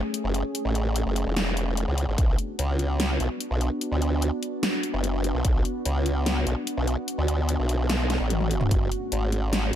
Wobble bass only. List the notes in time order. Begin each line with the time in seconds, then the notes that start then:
0.24 F#1
0.65 A1
1.06 F#1
1.26 E1
1.87 C#2
2.08 G#1
2.18 B1
2.59 C#2
3.20 B1
3.51 B1
3.92 D2
4.94 F#1
5.34 B1
5.45 B1
5.85 C#2
6.47 B1
6.77 B1
7.18 D2
7.59 B1
8.20 A1
8.71 F#1
9.12 G#1